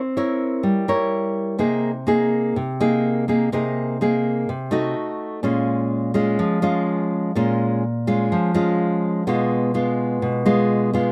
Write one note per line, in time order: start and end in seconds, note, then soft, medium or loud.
0.00 0.62 C4 medium
0.17 0.85 E4 soft
0.17 0.85 A#4 medium
0.17 0.85 C#5 medium
0.63 1.57 G3 medium
0.88 1.56 E4 medium
0.88 1.56 A#4 medium
0.88 1.57 C#5 medium
1.59 2.53 C3 medium
1.59 1.90 A#3 medium
1.59 1.90 D#4 medium
1.59 1.91 G#4 medium
2.07 2.55 A#3 medium
2.07 2.55 D#4 medium
2.07 2.55 G#4 medium
2.56 3.49 C3 medium
2.80 3.24 A#3 medium
2.80 3.24 D#4 medium
2.80 3.24 G#4 medium
3.28 3.48 A#3 soft
3.28 3.48 D#4 soft
3.28 3.48 G#4 medium
3.52 4.45 C3 medium
3.52 3.96 A#3 soft
3.52 3.96 D#4 medium
3.52 3.97 G#4 medium
4.01 4.48 A#3 soft
4.01 4.48 D#4 soft
4.01 4.48 G#4 medium
4.49 4.93 C3 medium
4.71 5.39 A3 medium
4.71 5.39 D#4 medium
4.71 5.39 F#4 medium
5.43 6.36 A#2 medium
5.43 6.11 G#3 soft
5.43 6.11 C#4 medium
5.43 6.11 F4 medium
6.14 6.58 G#3 medium
6.14 6.59 C#4 medium
6.14 6.59 F4 medium
6.39 7.32 F3 medium
6.62 7.30 G#3 medium
6.62 7.31 C#4 medium
6.62 7.31 F4 medium
7.35 8.28 A#2 medium
7.35 7.83 G#3 soft
7.35 7.83 C#4 medium
7.35 7.83 F4 medium
8.07 8.51 G#3 medium
8.07 8.51 C#4 medium
8.07 8.51 F4 medium
8.32 9.24 F3 medium
8.54 9.22 G#3 medium
8.54 9.22 C#4 medium
8.54 9.23 F4 medium
9.27 10.20 B2 medium
9.27 9.71 G#3 medium
9.27 9.71 B3 medium
9.27 9.71 F4 medium
9.74 10.42 G#3 soft
9.74 10.42 B3 medium
9.74 10.42 F4 medium
10.22 11.12 B2 medium
10.46 10.90 G#3 medium
10.46 10.90 B3 medium
10.46 10.90 F4 medium
10.93 11.12 G#3 soft
10.93 11.12 B3 medium
10.93 11.12 F4 medium